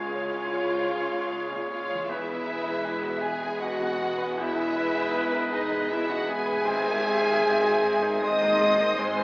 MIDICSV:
0, 0, Header, 1, 13, 480
1, 0, Start_track
1, 0, Tempo, 772201
1, 1310, Time_signature, 3, 2, 24, 8
1, 1311, Tempo, 758534
1, 4671, Tempo, 782269
1, 5786, End_track
2, 0, Start_track
2, 0, Title_t, "Violin section"
2, 0, Program_c, 0, 48
2, 0, Note_on_c, 0, 77, 81
2, 1048, Note_off_c, 0, 77, 0
2, 1064, Note_on_c, 0, 77, 85
2, 1292, Note_on_c, 0, 76, 88
2, 1301, Note_off_c, 0, 77, 0
2, 2016, Note_off_c, 0, 76, 0
2, 2018, Note_on_c, 0, 80, 92
2, 2258, Note_on_c, 0, 78, 94
2, 2263, Note_off_c, 0, 80, 0
2, 2742, Note_on_c, 0, 76, 102
2, 2746, Note_off_c, 0, 78, 0
2, 3467, Note_on_c, 0, 75, 93
2, 3470, Note_off_c, 0, 76, 0
2, 3705, Note_off_c, 0, 75, 0
2, 3713, Note_on_c, 0, 76, 94
2, 3833, Note_off_c, 0, 76, 0
2, 3837, Note_on_c, 0, 78, 101
2, 3953, Note_off_c, 0, 78, 0
2, 3960, Note_on_c, 0, 80, 121
2, 5167, Note_on_c, 0, 87, 109
2, 5168, Note_off_c, 0, 80, 0
2, 5636, Note_off_c, 0, 87, 0
2, 5644, Note_on_c, 0, 84, 118
2, 5786, Note_off_c, 0, 84, 0
2, 5786, End_track
3, 0, Start_track
3, 0, Title_t, "Flute"
3, 0, Program_c, 1, 73
3, 0, Note_on_c, 1, 73, 78
3, 1073, Note_off_c, 1, 73, 0
3, 1077, Note_on_c, 1, 73, 71
3, 1310, Note_on_c, 1, 71, 73
3, 1320, Note_off_c, 1, 73, 0
3, 2017, Note_on_c, 1, 76, 76
3, 2027, Note_off_c, 1, 71, 0
3, 2260, Note_on_c, 1, 75, 80
3, 2269, Note_off_c, 1, 76, 0
3, 2578, Note_off_c, 1, 75, 0
3, 2748, Note_on_c, 1, 71, 85
3, 3448, Note_off_c, 1, 71, 0
3, 3477, Note_on_c, 1, 71, 73
3, 3710, Note_off_c, 1, 71, 0
3, 3717, Note_on_c, 1, 71, 78
3, 3835, Note_on_c, 1, 75, 79
3, 3844, Note_off_c, 1, 71, 0
3, 3958, Note_on_c, 1, 76, 98
3, 3968, Note_off_c, 1, 75, 0
3, 5164, Note_on_c, 1, 84, 92
3, 5174, Note_off_c, 1, 76, 0
3, 5619, Note_off_c, 1, 84, 0
3, 5622, Note_on_c, 1, 80, 101
3, 5786, Note_off_c, 1, 80, 0
3, 5786, End_track
4, 0, Start_track
4, 0, Title_t, "Oboe"
4, 0, Program_c, 2, 68
4, 0, Note_on_c, 2, 73, 61
4, 1283, Note_off_c, 2, 73, 0
4, 1305, Note_on_c, 2, 71, 69
4, 2549, Note_off_c, 2, 71, 0
4, 2756, Note_on_c, 2, 71, 75
4, 3691, Note_off_c, 2, 71, 0
4, 3711, Note_on_c, 2, 71, 65
4, 4195, Note_on_c, 2, 72, 79
4, 4205, Note_off_c, 2, 71, 0
4, 5167, Note_off_c, 2, 72, 0
4, 5170, Note_on_c, 2, 72, 74
4, 5628, Note_off_c, 2, 72, 0
4, 5645, Note_on_c, 2, 72, 77
4, 5786, Note_off_c, 2, 72, 0
4, 5786, End_track
5, 0, Start_track
5, 0, Title_t, "Clarinet"
5, 0, Program_c, 3, 71
5, 0, Note_on_c, 3, 68, 55
5, 1280, Note_off_c, 3, 68, 0
5, 1300, Note_on_c, 3, 68, 75
5, 2546, Note_off_c, 3, 68, 0
5, 2751, Note_on_c, 3, 68, 73
5, 3689, Note_off_c, 3, 68, 0
5, 3712, Note_on_c, 3, 68, 81
5, 4177, Note_off_c, 3, 68, 0
5, 4197, Note_on_c, 3, 68, 77
5, 5149, Note_off_c, 3, 68, 0
5, 5168, Note_on_c, 3, 68, 82
5, 5627, Note_off_c, 3, 68, 0
5, 5637, Note_on_c, 3, 68, 77
5, 5786, Note_off_c, 3, 68, 0
5, 5786, End_track
6, 0, Start_track
6, 0, Title_t, "Grand piano"
6, 0, Program_c, 4, 0
6, 0, Control_c, 4, 64, 127
6, 0, Note_on_c, 4, 37, 51
6, 0, Note_on_c, 4, 68, 46
6, 95, Note_on_c, 4, 73, 45
6, 178, Note_off_c, 4, 68, 0
6, 215, Note_on_c, 4, 68, 42
6, 296, Note_off_c, 4, 73, 0
6, 334, Note_on_c, 4, 73, 58
6, 417, Note_off_c, 4, 68, 0
6, 467, Note_on_c, 4, 72, 39
6, 537, Note_off_c, 4, 73, 0
6, 590, Note_on_c, 4, 68, 54
6, 591, Note_off_c, 4, 72, 0
6, 708, Note_on_c, 4, 56, 42
6, 785, Note_off_c, 4, 68, 0
6, 825, Note_on_c, 4, 44, 42
6, 903, Note_off_c, 4, 56, 0
6, 942, Note_on_c, 4, 46, 42
6, 1021, Note_off_c, 4, 44, 0
6, 1067, Note_off_c, 4, 46, 0
6, 1067, Note_on_c, 4, 56, 44
6, 1177, Note_on_c, 4, 73, 52
6, 1260, Note_off_c, 4, 56, 0
6, 1283, Note_off_c, 4, 37, 0
6, 1298, Note_on_c, 4, 40, 61
6, 1303, Note_off_c, 4, 73, 0
6, 1322, Control_c, 4, 64, 0
6, 1409, Control_c, 4, 64, 127
6, 1420, Note_on_c, 4, 71, 50
6, 1539, Note_on_c, 4, 68, 47
6, 1616, Note_off_c, 4, 71, 0
6, 1659, Note_on_c, 4, 56, 50
6, 1735, Note_off_c, 4, 68, 0
6, 1777, Note_on_c, 4, 68, 64
6, 1853, Note_off_c, 4, 56, 0
6, 1890, Note_on_c, 4, 66, 51
6, 1972, Note_off_c, 4, 68, 0
6, 2017, Note_off_c, 4, 66, 0
6, 2017, Note_on_c, 4, 68, 59
6, 2143, Note_on_c, 4, 56, 50
6, 2214, Note_off_c, 4, 68, 0
6, 2259, Note_on_c, 4, 47, 48
6, 2339, Note_off_c, 4, 56, 0
6, 2384, Note_on_c, 4, 49, 51
6, 2457, Note_off_c, 4, 47, 0
6, 2507, Note_off_c, 4, 49, 0
6, 2507, Note_on_c, 4, 56, 44
6, 2622, Note_on_c, 4, 71, 66
6, 2702, Note_off_c, 4, 56, 0
6, 2719, Note_off_c, 4, 40, 0
6, 2745, Note_on_c, 4, 40, 69
6, 2762, Control_c, 4, 64, 0
6, 2820, Note_off_c, 4, 71, 0
6, 2855, Control_c, 4, 64, 127
6, 2866, Note_on_c, 4, 68, 57
6, 2988, Note_on_c, 4, 71, 57
6, 3063, Note_off_c, 4, 68, 0
6, 3107, Note_on_c, 4, 68, 59
6, 3184, Note_off_c, 4, 71, 0
6, 3231, Note_on_c, 4, 71, 68
6, 3303, Note_off_c, 4, 68, 0
6, 3347, Note_on_c, 4, 70, 46
6, 3425, Note_off_c, 4, 71, 0
6, 3471, Note_off_c, 4, 70, 0
6, 3473, Note_on_c, 4, 68, 62
6, 3592, Note_on_c, 4, 56, 56
6, 3665, Note_off_c, 4, 68, 0
6, 3718, Note_on_c, 4, 47, 57
6, 3784, Note_off_c, 4, 56, 0
6, 3832, Note_on_c, 4, 49, 50
6, 3906, Note_off_c, 4, 47, 0
6, 3951, Note_off_c, 4, 49, 0
6, 3956, Note_on_c, 4, 56, 51
6, 4064, Note_on_c, 4, 71, 70
6, 4142, Note_off_c, 4, 56, 0
6, 4159, Note_off_c, 4, 40, 0
6, 4184, Note_on_c, 4, 44, 73
6, 4185, Note_off_c, 4, 71, 0
6, 4199, Control_c, 4, 64, 0
6, 4308, Note_on_c, 4, 72, 58
6, 4311, Control_c, 4, 64, 127
6, 4430, Note_on_c, 4, 68, 58
6, 4499, Note_off_c, 4, 72, 0
6, 4556, Note_on_c, 4, 51, 60
6, 4622, Note_off_c, 4, 68, 0
6, 4679, Note_on_c, 4, 68, 68
6, 4746, Note_off_c, 4, 51, 0
6, 4796, Note_on_c, 4, 66, 58
6, 4870, Note_off_c, 4, 68, 0
6, 4917, Note_on_c, 4, 68, 67
6, 4918, Note_off_c, 4, 66, 0
6, 5043, Note_on_c, 4, 63, 61
6, 5115, Note_off_c, 4, 68, 0
6, 5162, Note_on_c, 4, 56, 59
6, 5237, Note_off_c, 4, 63, 0
6, 5282, Note_on_c, 4, 58, 48
6, 5354, Note_off_c, 4, 56, 0
6, 5401, Note_off_c, 4, 58, 0
6, 5401, Note_on_c, 4, 56, 59
6, 5521, Note_on_c, 4, 72, 62
6, 5587, Note_off_c, 4, 56, 0
6, 5608, Note_off_c, 4, 44, 0
6, 5632, Note_on_c, 4, 44, 71
6, 5644, Control_c, 4, 64, 0
6, 5705, Note_off_c, 4, 72, 0
6, 5747, Note_on_c, 4, 63, 54
6, 5748, Control_c, 4, 64, 127
6, 5786, Note_off_c, 4, 44, 0
6, 5786, Note_off_c, 4, 63, 0
6, 5786, End_track
7, 0, Start_track
7, 0, Title_t, "French horn section"
7, 0, Program_c, 5, 60
7, 0, Note_on_c, 5, 65, 86
7, 1045, Note_off_c, 5, 65, 0
7, 1071, Note_on_c, 5, 65, 62
7, 1300, Note_on_c, 5, 64, 76
7, 1305, Note_off_c, 5, 65, 0
7, 2020, Note_off_c, 5, 64, 0
7, 2021, Note_on_c, 5, 68, 76
7, 2265, Note_off_c, 5, 68, 0
7, 2267, Note_on_c, 5, 66, 83
7, 2751, Note_off_c, 5, 66, 0
7, 2761, Note_on_c, 5, 64, 98
7, 3480, Note_off_c, 5, 64, 0
7, 3485, Note_on_c, 5, 63, 77
7, 3718, Note_on_c, 5, 64, 92
7, 3719, Note_off_c, 5, 63, 0
7, 3833, Note_off_c, 5, 64, 0
7, 3835, Note_on_c, 5, 66, 78
7, 3952, Note_off_c, 5, 66, 0
7, 3969, Note_on_c, 5, 68, 90
7, 5172, Note_off_c, 5, 68, 0
7, 5178, Note_on_c, 5, 75, 89
7, 5546, Note_off_c, 5, 75, 0
7, 5650, Note_on_c, 5, 72, 118
7, 5786, Note_off_c, 5, 72, 0
7, 5786, End_track
8, 0, Start_track
8, 0, Title_t, "Violin section"
8, 0, Program_c, 6, 48
8, 0, Note_on_c, 6, 65, 78
8, 1050, Note_off_c, 6, 65, 0
8, 1057, Note_on_c, 6, 65, 73
8, 1298, Note_off_c, 6, 65, 0
8, 1298, Note_on_c, 6, 64, 82
8, 2012, Note_on_c, 6, 68, 84
8, 2019, Note_off_c, 6, 64, 0
8, 2260, Note_off_c, 6, 68, 0
8, 2271, Note_on_c, 6, 66, 85
8, 2739, Note_on_c, 6, 64, 96
8, 2753, Note_off_c, 6, 66, 0
8, 3454, Note_off_c, 6, 64, 0
8, 3479, Note_on_c, 6, 63, 77
8, 3716, Note_off_c, 6, 63, 0
8, 3716, Note_on_c, 6, 64, 88
8, 3829, Note_on_c, 6, 66, 79
8, 3834, Note_off_c, 6, 64, 0
8, 3949, Note_off_c, 6, 66, 0
8, 3949, Note_on_c, 6, 68, 89
8, 5162, Note_off_c, 6, 68, 0
8, 5169, Note_on_c, 6, 75, 93
8, 5637, Note_off_c, 6, 75, 0
8, 5637, Note_on_c, 6, 72, 121
8, 5786, Note_off_c, 6, 72, 0
8, 5786, End_track
9, 0, Start_track
9, 0, Title_t, "Harp"
9, 0, Program_c, 7, 46
9, 0, Note_on_c, 7, 49, 45
9, 721, Note_off_c, 7, 49, 0
9, 1197, Note_on_c, 7, 52, 55
9, 1226, Note_on_c, 7, 56, 45
9, 1253, Note_on_c, 7, 68, 43
9, 1281, Note_on_c, 7, 71, 46
9, 3662, Note_off_c, 7, 52, 0
9, 3692, Note_off_c, 7, 56, 0
9, 3720, Note_off_c, 7, 68, 0
9, 3748, Note_off_c, 7, 71, 0
9, 4084, Note_on_c, 7, 44, 64
9, 4113, Note_on_c, 7, 56, 53
9, 4167, Note_on_c, 7, 72, 50
9, 5786, Note_off_c, 7, 44, 0
9, 5786, Note_off_c, 7, 56, 0
9, 5786, Note_off_c, 7, 72, 0
9, 5786, End_track
10, 0, Start_track
10, 0, Title_t, "Viola section"
10, 0, Program_c, 8, 48
10, 0, Note_on_c, 8, 49, 63
10, 0, Note_on_c, 8, 56, 55
10, 1283, Note_off_c, 8, 49, 0
10, 1284, Note_off_c, 8, 56, 0
10, 1305, Note_on_c, 8, 56, 72
10, 1306, Note_on_c, 8, 59, 75
10, 4159, Note_off_c, 8, 56, 0
10, 4160, Note_off_c, 8, 59, 0
10, 4189, Note_on_c, 8, 56, 75
10, 4190, Note_on_c, 8, 60, 73
10, 4299, Note_off_c, 8, 56, 0
10, 4299, Note_off_c, 8, 60, 0
10, 4319, Note_on_c, 8, 51, 63
10, 4319, Note_on_c, 8, 63, 64
10, 4432, Note_off_c, 8, 51, 0
10, 4433, Note_off_c, 8, 63, 0
10, 4433, Note_on_c, 8, 56, 64
10, 4436, Note_on_c, 8, 60, 58
10, 4550, Note_off_c, 8, 56, 0
10, 4552, Note_off_c, 8, 60, 0
10, 4553, Note_on_c, 8, 63, 63
10, 4554, Note_on_c, 8, 51, 65
10, 4672, Note_off_c, 8, 63, 0
10, 4672, Note_on_c, 8, 60, 69
10, 4673, Note_off_c, 8, 51, 0
10, 4673, Note_on_c, 8, 56, 74
10, 4783, Note_off_c, 8, 60, 0
10, 4784, Note_off_c, 8, 56, 0
10, 4791, Note_on_c, 8, 51, 64
10, 4792, Note_on_c, 8, 63, 64
10, 4915, Note_off_c, 8, 51, 0
10, 4916, Note_off_c, 8, 63, 0
10, 4921, Note_on_c, 8, 56, 73
10, 4922, Note_on_c, 8, 60, 72
10, 5041, Note_on_c, 8, 51, 64
10, 5043, Note_off_c, 8, 56, 0
10, 5043, Note_on_c, 8, 63, 61
10, 5044, Note_off_c, 8, 60, 0
10, 5164, Note_off_c, 8, 51, 0
10, 5165, Note_off_c, 8, 63, 0
10, 5171, Note_on_c, 8, 60, 68
10, 5172, Note_on_c, 8, 56, 63
10, 5279, Note_off_c, 8, 60, 0
10, 5280, Note_off_c, 8, 56, 0
10, 5294, Note_on_c, 8, 51, 63
10, 5295, Note_on_c, 8, 63, 58
10, 5407, Note_off_c, 8, 51, 0
10, 5407, Note_off_c, 8, 63, 0
10, 5411, Note_on_c, 8, 60, 69
10, 5414, Note_on_c, 8, 56, 70
10, 5521, Note_on_c, 8, 51, 63
10, 5523, Note_off_c, 8, 60, 0
10, 5524, Note_off_c, 8, 56, 0
10, 5524, Note_on_c, 8, 63, 59
10, 5636, Note_off_c, 8, 51, 0
10, 5637, Note_off_c, 8, 63, 0
10, 5644, Note_on_c, 8, 56, 75
10, 5644, Note_on_c, 8, 60, 82
10, 5747, Note_off_c, 8, 56, 0
10, 5747, Note_off_c, 8, 60, 0
10, 5764, Note_on_c, 8, 63, 69
10, 5765, Note_on_c, 8, 51, 63
10, 5786, Note_off_c, 8, 51, 0
10, 5786, Note_off_c, 8, 63, 0
10, 5786, End_track
11, 0, Start_track
11, 0, Title_t, "Cello section"
11, 0, Program_c, 10, 48
11, 0, Note_on_c, 10, 37, 50
11, 1288, Note_off_c, 10, 37, 0
11, 1310, Note_on_c, 10, 40, 70
11, 4162, Note_off_c, 10, 40, 0
11, 4184, Note_on_c, 10, 44, 85
11, 4610, Note_off_c, 10, 44, 0
11, 4675, Note_on_c, 10, 44, 79
11, 5108, Note_off_c, 10, 44, 0
11, 5168, Note_on_c, 10, 44, 88
11, 5582, Note_off_c, 10, 44, 0
11, 5640, Note_on_c, 10, 44, 76
11, 5786, Note_off_c, 10, 44, 0
11, 5786, End_track
12, 0, Start_track
12, 0, Title_t, "Timpani"
12, 0, Program_c, 11, 47
12, 4192, Note_on_c, 11, 44, 95
12, 4893, Note_off_c, 11, 44, 0
12, 5786, End_track
13, 0, Start_track
13, 0, Title_t, "Double bass section"
13, 0, Program_c, 12, 48
13, 0, Note_on_c, 12, 37, 51
13, 1287, Note_off_c, 12, 37, 0
13, 1305, Note_on_c, 12, 28, 61
13, 4160, Note_off_c, 12, 28, 0
13, 4189, Note_on_c, 12, 32, 82
13, 4612, Note_off_c, 12, 32, 0
13, 4675, Note_on_c, 12, 32, 77
13, 5108, Note_off_c, 12, 32, 0
13, 5169, Note_on_c, 12, 32, 99
13, 5582, Note_off_c, 12, 32, 0
13, 5645, Note_on_c, 12, 32, 87
13, 5786, Note_off_c, 12, 32, 0
13, 5786, End_track
0, 0, End_of_file